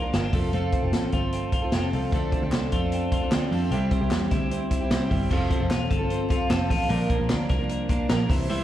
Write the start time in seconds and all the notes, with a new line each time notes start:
Already playing: A#1 F3 A#3 D4 F4
0.02 F3 A#3 D4 A#4
0.13 G1 F3 A#3 C4 D4 A#4, snare, closed hi-hat
0.24 D4
0.33 F1 F3 A3 C4 F4 A4, kick, open hi-hat
0.53 F1 F3 A3 C4 F4 A4, closed hi-hat
0.72 C4, kick, closed hi-hat
0.82 F1 C4 F4 A4
0.92 A1 A3, snare, closed hi-hat
1.12 G1 F3 C4 F4 A4, kick, closed hi-hat
1.32 C4, closed hi-hat
1.52 F4, kick, closed hi-hat
1.62 C4 F4 A4
1.72 F1 F3 C4 F4 A4, snare, closed hi-hat
1.92 C2 F3 A3 C4 F4 A4, open hi-hat
2.12 D2 D3 F3 A3 C4 D4 A4, kick, closed hi-hat
2.32 C4, kick, closed hi-hat
2.42 D2 C4 D4 A4
2.52 C2 A3, snare, clap, closed hi-hat
2.72 F2 F3 C4 D4 F4 A4, kick, closed hi-hat
2.92 C4, closed hi-hat
3.12 F4, kick, closed hi-hat
3.21 C4 D4 A4
3.31 D2 F3 C4 D4 A4, snare, clap, closed hi-hat
3.51 F2 F3 A3 C4 D4 A4, open hi-hat
3.71 C2 C3 G3 C4 E4 G4, closed hi-hat
3.91 C4, kick, closed hi-hat
4.01 C2 C4 E4 G4
4.11 E2 G3, snare, clap, closed hi-hat
4.31 D2 G3 C4 E4 G4, kick, snare, closed hi-hat
4.51 C4, closed hi-hat
4.71 E4, kick, closed hi-hat
4.81 C4 E4 G4
4.90 C2 G3 C4 E4 G4, snare, clap, closed hi-hat
5.10 G1 G3 C4 E4 G4, kick, open hi-hat
5.30 F1 F3 C4 F4 A4, kick, crash
5.50 C4, kick, hi-hat pedal, open hi-hat
5.60 F1 C4 F4 A4
5.71 E1 F4, snare, clap, hi-hat pedal, open hi-hat
5.90 G1 A4, kick, hi-hat pedal, open hi-hat
5.99 C4 F4 A4
6.10 C4, hi-hat pedal, open hi-hat
6.28 F3 C4 F4 A4, kick, hi-hat pedal, open hi-hat
6.49 F1 F3 C4 F4 A4, snare, clap, hi-hat pedal, open hi-hat
6.68 A1 F3 C4 F4 A4, kick, hi-hat pedal, open hi-hat
6.88 A#1 A#2 D3 F3 A#3 D4 A#4, hi-hat pedal, open hi-hat
7.10 A#3, kick, hi-hat pedal, open hi-hat
7.18 A#1 F3 A#3 D4 A#4
7.29 D2 D4, snare, clap, hi-hat pedal, open hi-hat
7.49 C2 A#4, kick, snare, hi-hat pedal, open hi-hat
7.58 F3 A#3 D4 A#4
7.69 A#3, hi-hat pedal, open hi-hat
7.88 F3 A#3 D4 A#4, kick, hi-hat pedal, open hi-hat
8.08 A#1 F3 A#3 D4 A#4, snare, clap, hi-hat pedal, open hi-hat
8.28 C2 E3 G3 C4 E4 C5, kick, hi-hat pedal, open hi-hat
8.49 C3 E3 G3 C4 E4 C5, hi-hat pedal, open hi-hat